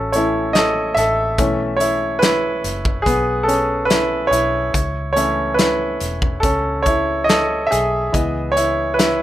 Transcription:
Already playing: A1 E3 A3 C#4 F#4 A4 D#5 E5
0.12 E3 A3 C#4 E4 C#5, closed hi-hat
0.53 A4 D#5, snare, closed hi-hat
0.95 A1 A4 E5, closed hi-hat
1.38 B1 E3 A3 C#4, kick, closed hi-hat
1.77 E4 C#5, closed hi-hat
2.19 B4, snare, closed hi-hat
2.23 E4
2.64 F#1, closed hi-hat
2.85 kick
3.02 B3 G#4
3.06 B1, kick, closed hi-hat
3.43 A4
3.48 C#4, closed hi-hat
3.85 B4
3.90 E4, snare, closed hi-hat
4.27 C#5
4.31 B1 E4, closed hi-hat
4.74 C#2, kick, closed hi-hat
5.13 E3 A3 C#4 C#5, closed hi-hat
5.17 E4
5.54 B4
5.59 E4, snare, closed hi-hat
6.00 E1, closed hi-hat
6.22 kick
6.40 C#2 A4, kick, closed hi-hat
6.44 C#4
6.83 C#5, kick, closed hi-hat
6.87 E4
7.24 D#5
7.29 A4, snare, closed hi-hat
7.67 E5
7.71 B1 G#4, closed hi-hat
8.12 C#2 E3 B3 D#5, kick, closed hi-hat
8.52 C#5
8.57 E4, closed hi-hat
8.94 B4
8.99 E4, snare, closed hi-hat

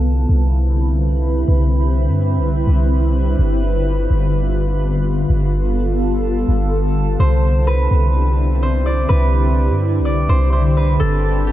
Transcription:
Already playing: C2 D3 G3 C4 E4 B4
0.29 C2
1.48 C2
2.08 G2
2.37 C2
2.67 C2
3.39 G1 B3 F4
4.10 G1
5.29 G1 A4
6.48 G1
7.19 C2 D3 C4 D4 E4 G4 C5
7.67 B4
7.91 C2
8.63 C5
8.86 D5
9.09 C2 B4
9.69 G2
9.99 C2
10.05 D5
10.29 C2 C5
10.53 C5
10.77 B4
11.00 G1 A4
11.47 G4

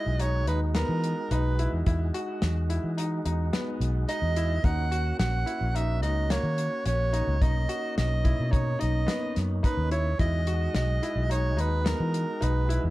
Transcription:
Already playing: G#3 D#4 E4 F#4 D#5
0.06 B1
0.19 D#4 C#5, closed hi-hat
0.47 D#2 D#4 B4, closed hi-hat
0.75 B3 A#4, snare, closed hi-hat
0.89 E3
1.04 closed hi-hat
1.31 B1 D#4 B4, closed hi-hat
1.59 E4, closed hi-hat
1.73 E2
1.86 E2 E4, kick, closed hi-hat
2.14 F#4, closed hi-hat
2.42 E2, snare, closed hi-hat
2.70 E4, closed hi-hat
2.84 E3
2.97 D#4, closed hi-hat
3.25 E2 D#4, closed hi-hat
3.53 B3, snare, closed hi-hat
3.80 B1, closed hi-hat
4.09 D#4 D#5, closed hi-hat
4.22 E2
4.36 E4, closed hi-hat
4.62 D#2 A#3 C#4 D#4 F#4 F#5, kick, closed hi-hat
4.92 F#4, closed hi-hat
5.19 A#1 F#5, snare, closed hi-hat
5.46 E4, closed hi-hat
5.61 A#1
5.75 D#4 E5, closed hi-hat
6.02 C#2 D#4 D#5, closed hi-hat
6.30 A#3 C#5, snare, closed hi-hat
6.43 D#3
6.58 closed hi-hat
6.86 A#1 C#4 C#5, closed hi-hat
7.13 D#4, closed hi-hat
7.27 C#2
7.40 B1 A#3 C#4 D#4 D#5, kick, closed hi-hat
7.69 F#4, closed hi-hat
7.98 B1 D#5, snare, closed hi-hat
8.24 E4, kick, closed hi-hat
8.40 B2
8.51 D#4 C#5, kick, closed hi-hat
8.79 B1 D#4 D#5, closed hi-hat
9.07 B3, snare, closed hi-hat
9.36 F#2, snare, closed hi-hat
9.63 D#4 B4, kick, closed hi-hat
9.77 D#2
9.91 E4 C#5, closed hi-hat
10.18 E2 G#3 D#4 E4 F#4 D#5, kick, closed hi-hat
10.47 F#4, closed hi-hat
10.75 B1 D#5, snare, closed hi-hat
11.03 E4, closed hi-hat
11.16 B1
11.30 D#4 C#5, closed hi-hat
11.57 D#2 D#4 B4, closed hi-hat
11.85 B3 A#4, snare, closed hi-hat
12.00 E3
12.14 closed hi-hat
12.41 B1 D#4 B4, closed hi-hat
12.69 E4, closed hi-hat
12.84 E2

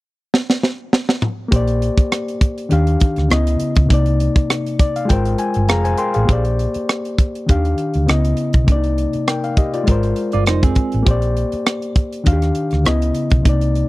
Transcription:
0.34 snare
0.50 snare
0.63 snare
0.93 snare
1.09 snare
1.22 mid tom
1.48 A#3 G4, kick, closed hi-hat
1.53 A#1 C5 D5
1.67 closed hi-hat
1.82 closed hi-hat
1.98 muted fingered electric bass stroke, kick, closed hi-hat
2.12 cross-stick, closed hi-hat
2.28 closed hi-hat
2.41 kick, closed hi-hat
2.58 closed hi-hat
2.69 D#2 D#3 D4 G4 F5, closed hi-hat
2.87 closed hi-hat
3.00 kick, closed hi-hat
3.16 D2, cross-stick, closed hi-hat
3.28 C#2 C#3 B3 E4 D#5, cross-stick, closed hi-hat
3.47 closed hi-hat
3.60 muted fingered electric bass stroke, closed hi-hat
3.75 C#2, kick, closed hi-hat
3.86 C3 A#3
3.90 C2 D#4 D5, kick, closed hi-hat
4.06 closed hi-hat
4.20 closed hi-hat
4.36 muted fingered electric bass stroke, kick, closed hi-hat
4.50 cross-stick, closed hi-hat
4.67 closed hi-hat
4.79 D5, kick, closed hi-hat
4.96 F5, closed hi-hat
5.05 G#3 F4 G5
5.09 G#1 A#4 C5, kick, closed hi-hat
5.25 closed hi-hat
5.38 G#5, closed hi-hat
5.54 G1, closed hi-hat
5.69 F1 G#4 F5 A#5, cross-stick, closed hi-hat
5.84 C5 G#5, closed hi-hat
5.98 A#4 G5 C6, closed hi-hat
6.14 A1 G#4 F5, closed hi-hat
6.25 A#3 G4, kick, closed hi-hat
6.29 A#1 C5 D5
6.45 closed hi-hat
6.59 closed hi-hat
6.74 muted fingered electric bass stroke, closed hi-hat
6.89 cross-stick, closed hi-hat
7.05 closed hi-hat
7.18 kick, closed hi-hat
7.35 closed hi-hat
7.46 D#2 D#3 D4 G4, kick, closed hi-hat
7.51 F5
7.65 closed hi-hat
7.78 closed hi-hat
7.94 D2, closed hi-hat
8.06 C#2 C#3 B3 E4 D#5, cross-stick, closed hi-hat
8.25 closed hi-hat
8.37 closed hi-hat
8.53 B1, kick, closed hi-hat
8.64 C2 C3 A#3, kick, closed hi-hat
8.69 D4 D5
8.76 D#4
8.84 closed hi-hat
8.98 closed hi-hat
9.13 muted fingered electric bass stroke, closed hi-hat
9.28 A#4 G5, cross-stick, closed hi-hat
9.44 F5, closed hi-hat
9.57 G4 D#5, kick, closed hi-hat
9.74 F4 D5, closed hi-hat
9.84 G#3 F4, kick, closed hi-hat
9.88 G#1 A#4 C5
10.03 closed hi-hat
10.16 closed hi-hat
10.32 G1 F4 D5, closed hi-hat
10.46 F1 D#4 C5, cross-stick, closed hi-hat
10.63 C4 G#4, kick, closed hi-hat
10.75 kick, closed hi-hat
10.92 A1, closed hi-hat
11.03 A#3 G4, kick, closed hi-hat
11.07 A#1 C5 D5
11.22 closed hi-hat
11.37 closed hi-hat
11.52 muted fingered electric bass stroke, closed hi-hat
11.66 cross-stick, closed hi-hat
11.82 closed hi-hat
11.96 kick, closed hi-hat
12.13 closed hi-hat
12.24 D#2 D#3 D4 F#4 F5, kick, closed hi-hat
12.33 G4
12.42 cross-stick, closed hi-hat
12.55 closed hi-hat
12.71 D2, cross-stick, closed hi-hat
12.84 C#2 C#3 B3 E4 D#5, cross-stick, closed hi-hat
13.02 closed hi-hat
13.14 closed hi-hat
13.30 B1, kick, closed hi-hat
13.42 C2 C3 A#3, kick, closed hi-hat
13.47 D#4 D5
13.61 closed hi-hat
13.75 closed hi-hat

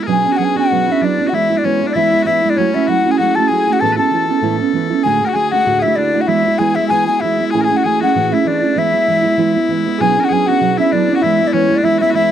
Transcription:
0.03 G#4 A#4
0.07 B2 F#3 B3 C#4 D4 G#4
0.12 G#5
0.24 B3 C#4 D4
0.32 F#4
0.37 F#3 B3 C#4 G#4 F#5
0.41 D4 G#5
0.55 B3 C#4 D4 F#4 F#5
0.71 B2 F#3 B3 C#4 D4
0.86 C#4 D4 E4
0.91 B3 E5
1.01 F#3 B3 C#4 D4 D5
1.17 B3 C#4 D4
1.26 F#4 F#5
1.32 E3 G#3 B3 E4 E5
1.50 G#3 B3 E4
1.57 D4 D5
1.63 E3 G#3 B3 C#4 E4 C#5
1.81 G#3 B3 E4
1.87 D4 D5
1.93 E3 G#3 B3 E4 E5
2.12 G#3 B3 E4
2.23 E3 G#3 E4 F#4 E5
2.27 B3 E4
2.43 G#3 B3 E4
2.50 D4 D5
2.56 F#3 A3 C#4 F#4 C#5
2.73 A3 C#4 E4 F#4 E5
2.87 F#3 A3 C#4 F#4 F#5
3.05 A3 C#4 F#4
3.11 G#4 G#5
3.18 F#3 A3 C#4 F#4 F#5
3.35 C#4 F#4 A4 A5
3.39 A3
3.48 F#3 A3 G#4 G#5
3.52 C#4 F#4
3.67 A3 C#4 F#4
3.72 F#4 F#5
3.80 A2 E3 B3 C#4 E4 A4 A5
3.92 B4
3.96 B3 C#4 E4 A4 A5
4.11 E3 B3 C#4 E4
4.28 B3 C#4 E4
4.41 A2 E3 B3 C#4 E4 A4
4.59 B3 C#4 E4
4.73 E3 B3 C#4 E4
4.90 B3 C#4 E4
5.03 D2 A2 D3 A3 D4 F#4 G#4 G#5
5.20 D3 A3 D4 F#4
5.25 F#4 A#4 F#5
5.29 F#4
5.34 D3 A3 D4 F#4 G#4 G#5
5.51 A3 D4 F#4 F#5
5.55 D3
5.66 D2 A2 D3 A3 D4 F#4
5.79 E4 F#4 G#4 E5
5.84 D3 A3 D4 E4
5.96 D3 A3 D4 F#4 D5
6.14 D3 A3 D4 F#4
6.20 F#4 F#5
6.27 E3 G#3 B3 E4 E5
6.45 G#3 B3 E4
6.58 E3 G#3 B3 E4 G#4 G#5
6.75 B3 E4 E5
6.79 G#3
6.88 E3 G#3 G#4 G#5
6.92 B3 E4
7.06 G#3 B3 E4 G#4 G#5
7.19 E3 E4 E5
7.23 G#3 B3 E4
7.40 G#3 B3
7.51 A2 E3 A3 C#4 G#4 G#5
7.55 E4 G#5
7.61 G#4 A#4 G#5
7.67 C#4 E4 G#4
7.72 A3
7.77 F#4 F#5
7.84 E3 A3 C#4 E4 G#4 G#5
8.00 A3 C#4 E4 F#4 F#5
8.15 A2 E3 A3 C#4 E4
8.31 A3 C#4 E4 E5
8.43 E3 A3 C#4 D4 E4
8.47 D4 E4 D5
8.62 A3 C#4 D4 E4
8.76 E3 G#3 B3 E4 E5
8.93 G#3 B3 E4
9.08 E3 G#3 B3 E4
9.23 G#3 B3 E4
9.37 E3 G#3 B3 E4
9.54 G#3 B3 E4
9.69 E3 G#3 B3 E4
9.86 G#3 B3 E4
9.98 B2 F#3 B3 C#4 G#4 G#5
10.02 D4
10.17 C#4 D4 A#4
10.24 F#4 F#5
10.29 F#3 B3 C#4 D4 G#4 G#5
10.47 B3 C#4 D4 F#4 F#5
10.60 B2 F#3 B3 C#4 D4 F#4
10.77 B3 C#4 D4 E4 E5
10.91 F#3 B3 C#4 D4 D5
11.00 D4
11.08 B3 C#4 D4
11.16 F#4 F#5
11.21 E3 G#3 B3 E4 E5
11.26 E4
11.39 G#3 B3 E4
11.46 D4 D5
11.53 E3 G#3 B3 C#4 E4 C#5
11.69 G#3 B3 E4
11.76 D4 D5
11.83 E3 G#3 B3 E4 E5
11.99 B3 E4 F#4 E5
12.03 G#3
12.11 E3 E4 F#4 E5
12.15 G#3 B3 E4

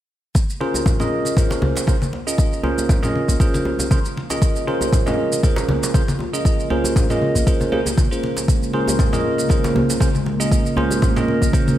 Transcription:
0.35 C#3 G#3 A#3 F4, kick, muted conga, shaker
0.50 shaker
0.61 C#4 F4 G#4 A#4 C5, muted conga
0.74 djembe tone, shaker
0.86 kick, low conga, shaker
1.00 C#4 F4 G#4 A#4 D#5, muted conga, low conga, shaker
1.25 muted conga, shaker
1.37 C#4 F4 G#4 A#4 C5, kick, low conga, shaker
1.50 muted conga, djembe slap, shaker
1.62 high conga, djembe tone, djembe bass
1.76 muted conga, djembe slap, shaker
1.87 C#4 F4 G#4 A#4 C5, kick, high conga, shaker
2.02 high conga, shaker
2.13 muted conga, djembe tone
2.27 C#4 F4 G#4 A#4 D#5, shaker
2.38 kick, muted conga, shaker
2.53 shaker
2.63 C#4 F4 G#4 A#4 C5, muted conga, djembe bass
2.78 djembe tone, shaker
2.89 kick, low conga, shaker
3.03 C#4 F4 G#4 A#4 D#5, muted conga, low conga, shaker
3.15 high conga
3.28 kick, muted conga, djembe bass, shaker
3.40 C#4 F4 G#4 A#4 C5, kick, shaker
3.54 muted conga, high conga, shaker
3.65 djembe tone
3.79 muted conga, djembe tone, shaker
3.91 C#4 F4 G#4 A#4 C5, kick, high conga, shaker
4.05 shaker
4.17 muted conga
4.30 C#4 F4 G#4 A#4 D#5, djembe slap, shaker
4.42 kick, muted conga, shaker
4.56 shaker
4.67 C#4 F4 G#4 A#4 C5, muted conga
4.81 djembe tone, shaker
4.93 kick, low conga, shaker
5.06 C#4 F4 G#4 A#4 D#5, muted conga, low conga, shaker
5.33 muted conga, shaker
5.43 C#4 F4 G#4 A#4 C5, kick, low conga, shaker
5.56 djembe slap, muted conga, shaker
5.69 djembe tone, high conga, djembe bass
5.83 muted conga, djembe slap, shaker
5.94 C#4 F4 G#4 A#4 C5, kick, high conga, shaker
6.08 high conga, shaker
6.19 muted conga, djembe tone
6.33 C#4 F4 G#4 A#4 D#5, shaker
6.45 kick, muted conga, shaker
6.60 shaker
6.70 C#4 F4 G#4 A#4 C5, muted conga, djembe bass
6.84 djembe tone, shaker
6.96 kick, low conga, shaker
7.10 C#4 F4 G#4 A#4 D#5, muted conga, low conga, shaker
7.22 high conga
7.35 kick, muted conga, high conga, djembe bass, shaker
7.47 C#4 F4 G#4 A#4 C5, kick, djembe tone, shaker
7.61 muted conga, high conga, shaker
7.72 C#4 F4 G#4 A#4 C5, djembe tone
7.86 muted conga, djembe tone, shaker
7.98 kick, high conga, shaker
8.11 C#4 F4 G#4 A#4 C5, shaker
8.23 muted conga
8.37 djembe slap, shaker
8.48 A#4, kick, muted conga, shaker
8.63 shaker
8.73 C#4 F4 G#4 A#4 C5, muted conga
8.88 djembe tone, shaker
8.99 kick, low conga, shaker
9.13 C#4 F4 G#4 A#4 D#5, muted conga, low conga, shaker
9.38 muted conga, shaker
9.49 C#4 F4 G#4 A#4 C5, kick, low conga, shaker
9.64 muted conga, djembe slap, shaker
9.76 djembe tone, high conga, djembe bass
9.90 djembe slap, muted conga, shaker
10.00 C#4 F4 G#4 A#4 C5, kick, high conga, shaker
10.15 high conga, shaker
10.26 muted conga, djembe tone
10.40 C#4 F4 G#4 A#4 D#5, shaker
10.51 kick, muted conga, shaker
10.66 shaker
10.77 C#4 F4 G#4 A#4 C5, muted conga, djembe bass
10.91 djembe tone, shaker
11.02 kick, low conga, shaker
11.16 C#4 F4 G#4 A#4 D#5, muted conga, low conga, shaker
11.28 high conga
11.42 kick, muted conga, djembe bass, shaker
11.53 C#4 F4 G#4 A#4 C5, kick, shaker
11.68 muted conga, high conga, shaker

